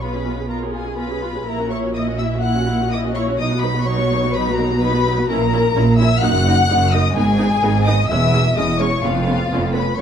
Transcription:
Already playing: B1 B2
0.01 B3 F4 B4 B5
0.14 C#4 G#4
0.26 B3 F4
0.37 C#4 G#4
0.49 B3 F4 A#4 A#5
0.61 C#4 G#4
0.72 B3 F4 G#4 G#5
0.85 C#4 G#4
0.98 B3 F4 B4 B5
1.09 C#4 G#4
1.22 B3 F4
1.34 C#4 G#4
1.46 A#1 A#2 A#3 E4 A#4 A#5
1.58 C#4 F#4
1.70 A#3 E4 C#5 C#6
1.83 C#4 F#4
1.94 A#3 E4 D#5 D#6
2.08 C#4 F#4
2.18 A#3 E4 E5 E6
2.33 C#4 F#4
2.42 A#3 E4 F#5 F#6
2.55 C#4 F#4
2.68 A#3 E4
2.79 C#4 F#4
2.90 A#3 E4 D#5 D#6
3.03 C#4 F#4
3.15 A#3 E4 C#5 C#6
3.27 C#4 F#4
3.38 B1 B2 F#3 D#4 D#5 D#6
3.52 B3 F#4
3.61 F#3 D#4 B4 B5
3.75 B3 F#4
3.85 F#3 D#4 C#5 C#6
3.99 B3 F#4
4.11 F#3 D#4
4.24 B3 F#4
4.33 F#3 D#4 B4 B5
4.48 B3 F#4
4.56 F#3 D#4 A#4 A#5
4.70 B3 F#4
4.80 F#3 D#4 B4 B5
4.93 B3 F#4
5.05 F#3 D#4
5.17 B3 F#4
5.28 A#1 A#2 C#4 E4 A#4 A#5
5.53 C#4 E4
5.75 A#1 A#2 C#4 E4
5.98 C#4 E4 E5 E6
6.21 F#1 F#2 A#3 D#4 F#5 F#6
6.47 A#3 D#4
6.69 F#1 F#2 A#3 D#4
6.92 A#3 D#4 D#5 D#6
7.14 G#1 G#2 B3 D#4 G#4 G#5
7.39 B3 D#4
7.62 G#1 G#2 B3 D#4
7.86 B3 D#4 D#5 D#6
8.09 E1 E2 G#3 C#4 E5 E6
8.34 G#3 C#4
8.56 E1 E2 G#3 C#4 D#5 D#6
8.80 G#3 C#4 C#5 C#6
9.03 F1 F2 B3 C#4 F4 F5
9.29 B3 C#4
9.51 F1 F2 B3 C#4
9.73 B3 C#4 B4 B5
9.98 F#2 C#5 C#6

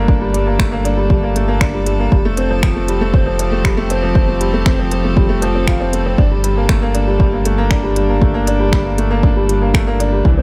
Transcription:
Already playing: G1 G3 A3 A#3 D4 A4
0.08 D4, kick
0.21 G3
0.34 G3, closed hi-hat
0.47 A#3
0.59 A3, finger snap, kick
0.72 A#3
0.85 D4, closed hi-hat
0.97 G3
1.10 G3, kick
1.23 A#3
1.35 A3, closed hi-hat
1.48 A#3
1.61 D4, finger snap, kick
1.74 G3
1.86 G3, closed hi-hat
1.99 A#3
2.12 F1 F3 G3, kick
2.25 A3 C4
2.37 C4, closed hi-hat
2.50 F3 G4
2.63 F3, finger snap, kick
2.76 A3
2.88 G3, closed hi-hat
3.01 A3
3.14 C4, kick
3.26 F3
3.39 F3, closed hi-hat
3.52 A3
3.64 G3, finger snap, kick
3.77 A3
3.90 C4, closed hi-hat
4.03 F3
4.15 F3, kick
4.28 A3
4.41 G3, closed hi-hat
4.53 A3
4.66 C4, finger snap, kick
4.79 F3
4.91 F3, closed hi-hat
5.04 A3
5.16 G3, kick
5.29 A3
5.42 F3, closed hi-hat
5.55 C4
5.67 F4, finger snap, kick
5.80 C4
5.93 A3, closed hi-hat
6.06 C4
6.18 G1 G3 D4, kick
6.31 G3
6.38 D4
6.44 G3, closed hi-hat
6.57 A#3
6.69 A3, finger snap, kick
6.82 A#3
6.94 D4, closed hi-hat
7.07 G3
7.20 G3, kick
7.33 A#3
7.45 A3, closed hi-hat
7.58 A#3
7.71 D4, finger snap, kick
7.83 G3
7.96 G3, closed hi-hat
8.09 A#3
8.22 A3, kick
8.34 A#3
8.47 D4, closed hi-hat
8.60 G3
8.72 G3, finger snap, kick
8.85 A#3
8.98 A3, closed hi-hat
9.11 A#3
9.23 D4, kick
9.36 G3
9.49 G3, closed hi-hat
9.62 A#3
9.74 A3, finger snap, kick
9.87 A#3
10.00 D4, closed hi-hat
10.12 G3
10.25 C2 E3 C4, kick
10.37 C4

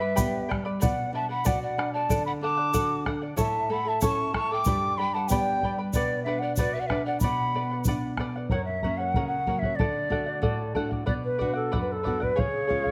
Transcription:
Already playing: G2 G3 B4 E5
0.01 B4 D5 B5
0.15 B3 G4 B4 D5 G5 B5, bombo low, shaker
0.49 G3 B4 D5 G5 B5, bombo rim, bombo low
0.65 B4 D5 B5
0.80 B2 B4 D5 F#5, bombo low, shaker
1.13 D4 B4 D5 E5 F#5 A5
1.29 D5 F#5 B5
1.45 F#4 B4 D5 F#5, bombo low, shaker
1.62 D5 F#5
1.78 D4 B4 D5 F#5, bombo rim
1.93 D5 F#5 A5
2.09 D3 A4 D5 F#5, bombo low, shaker
2.26 F#5 B5
2.41 D4 A4 D5 F#5 A5 D6
2.57 D5 F#5
2.74 F#4 A4 D5 F#5, bombo low, shaker
3.05 D4 A4 D5 F#5, bombo rim, bombo low
3.22 D5 F#5
3.36 A2 E4 A4 C#5 E5 A5, bombo low, shaker
3.70 A3 E4 A4 E5 F#5 A5 B5
3.85 E4 A4 E5 A5
4.01 C#4 E4 A4 C#5 E5 A5 C#6, bombo low, shaker
4.05 A5
4.33 A3 E4 A4 E5 A5 C#6, bombo rim, bombo low
4.51 E4 A4 G5 A5 D6
4.65 G2 G4 B4 D5 G5 B5, bombo low, shaker
4.98 G3 B4 D5 G5 B5
5.14 B4 D5 F#5 A5 B5
5.28 B3 G4 B4 D5 G5, bombo low, shaker
5.32 D5 B5
5.61 G3 B4 D5 G5 B5, bombo low
5.78 B4 D5 B5
5.93 B2 B4 D5 F#5, bombo low, shaker
6.23 D4 B4 E5
6.28 D5 F#5
6.39 D5 F#5
6.44 D5
6.56 F#4 B4 D5 F#5, bombo low, shaker
6.73 B4 E5
6.80 D5 F#5
6.87 D4 B4 E5, bombo rim, bombo low
6.91 B4 D5 F#5
7.05 D5 F#5
7.20 B2 B4 D5 F#5 B5, bombo low, shaker
7.24 F#5
7.54 B3 B4 D5 F#5
7.71 D5 F#5
7.84 D4 B4 D5, bombo low, shaker
7.89 F#5
8.17 B3 B4 D5 F#5, bombo rim, bombo low
8.36 D5 F#5
8.50 F#2 A#4 C#5 F#5, bombo low
8.65 E5
8.83 F#3 A#3 C#4 A#4 C#5 F#5, bombo low
8.97 C#5 F#5
9.14 C#3 A#4 C#5 F#5, bombo low
9.27 F#5
9.47 F#3 A#3 C#4 A#4 C#5 F#5, bombo low
9.59 E5, bombo low
9.63 C#5 F#5
9.75 D3 D5
9.80 A4 D5 F#5, bombo low
10.09 A3 D4 F#4 A4 D5 F#5, bombo low
10.26 D5 F#5
10.42 A2 A4 D5 F#5, bombo low
10.75 A3 D4 F#4 A4 D5 F#5, bombo low
10.91 D5 F#5, bombo low
11.06 B2 B4 D5 F#5, bombo low
11.24 B4
11.38 B3 D4 F#4 B4 D5 F#5, bombo low
11.53 A4 D5 F#5
11.71 F#2 B4 D5 F#5, bombo low
11.81 B4
11.92 A4
12.03 B3 D4 F#4 B4 D5 F#5, bombo low
12.20 B4 D5 F#5, bombo low
12.36 C#3 G#4 C#5 F5, bombo low
12.41 G#4
12.67 G#3 C#4 F4 G#4 C#5 F5, bombo low
12.84 C#5 F5, bombo low

